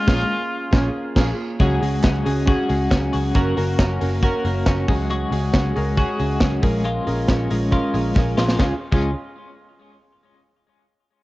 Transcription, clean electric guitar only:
Already playing: G#3 C#4
1.60 G#3 F#4
1.83 G#3
2.04 C#4
2.26 G#3
2.48 F#4
2.69 G#3
2.91 C#4
3.13 F#4
3.35 A#3 F#4
3.57 A#3
3.79 C#4
4.01 A#3
4.23 F#4
4.45 A#3
4.67 C#4
4.89 G#3
5.10 G#3 F#4
5.32 G#3
5.54 C#4
5.76 G#3
5.98 F#4
6.20 G#3
6.42 C#4
6.63 G#3
6.85 G#3 F4
7.07 G#3
7.29 C#4
7.51 G#3
7.72 F4
7.94 G#3
8.16 C#4
8.37 F4
8.59 G#3 C#4 F4
8.92 G#3 C#4 F4

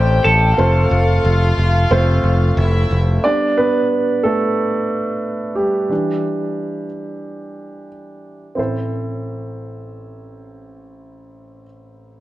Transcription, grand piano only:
Already playing: A3 C4 E4 A4 D5
0.58 A3 C4 F4 A4 C5
1.91 A3 C4 F4 A4 C5
3.24 G3 B3 D4 D5
3.58 B3 B4
4.23 A3 A4
5.56 G3 G4
5.89 E3 G3 D4
8.55 A1 C4 E4 A4
8.59 C5

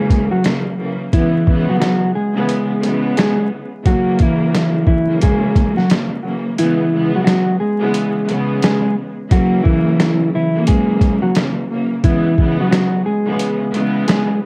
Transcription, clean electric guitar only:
Already playing: G#3 G#4
0.31 F#3 F#4
1.14 E3 E4
1.70 F#3 F#4
1.80 F#3 F#4
2.15 G#3 G#4
3.17 G#3 G#4
3.86 F#3 F#4
4.22 E3 E4
4.87 E3 E4
5.23 G#3 G#4
5.77 F#3 F#4
6.59 E3 E4
7.16 F#3 F#4
7.24 F#3 F#4
7.60 G#3 G#4
8.64 G#3 G#4
9.32 F#3 F#4
9.63 E3 E4
10.35 E3 E4
10.68 G#3 G#4
11.22 F#3 F#4
12.04 E3 E4
12.61 F#3 F#4
12.71 F#3 F#4
13.06 G#3 G#4
14.08 G#3 G#4

